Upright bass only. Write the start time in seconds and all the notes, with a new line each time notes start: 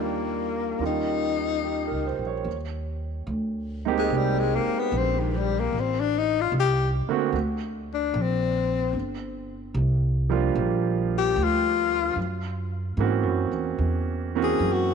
Already playing: D#2
0.79 D#2
1.91 C#2
2.18 A#1
2.44 D#2
3.27 D2
4.10 C2
4.66 muted upright bass stroke
4.92 A#1
5.73 A1
6.52 C2
7.07 muted upright bass stroke
7.32 D2
8.14 A#1
8.93 G1
9.74 C2
10.55 A#1
11.36 D2
12.16 F#2
12.97 G#2
13.23 F#2
13.51 E2
13.78 E2
14.60 F#2